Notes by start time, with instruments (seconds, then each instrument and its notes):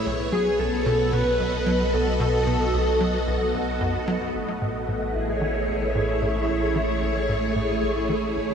Already playing: synth texture B4, string machine C#5
0.06 sub bass B1, analog synth bass B1, string machine B3
0.32 analog synth bass F#3, analog synth lead G#4
0.59 analog synth bass B1, analog synth lead A4
0.74 string machine F#4 A4
0.86 analog synth bass B2
1.13 analog synth bass B2, analog synth lead B4
1.33 string machine D#5
1.40 analog synth bass B1
1.66 analog synth bass F#3
1.93 analog synth bass B1, analog synth lead A4
2.20 analog synth bass B2
2.47 analog synth bass B2
2.74 analog synth bass B1
3.01 analog synth bass F#3
3.27 analog synth bass B1
3.54 analog synth bass B1
3.81 analog synth bass F#2
4.08 analog synth bass F#3
4.34 analog synth bass A1, sub bass A1, string machine A3
4.61 analog synth bass A2
4.88 analog synth bass A2
5.03 string machine E4
5.15 analog synth bass A1, string machine G#4
5.29 string machine C#5
5.41 analog synth bass E3
5.68 analog synth bass A1
5.95 analog synth bass A2
6.22 analog synth bass A2
6.48 analog synth bass A1
6.75 analog synth bass E3
7.02 analog synth bass A1
7.29 analog synth bass A2
7.56 analog synth bass A2
7.82 analog synth bass A1
8.09 analog synth bass E3
8.36 analog synth bass A1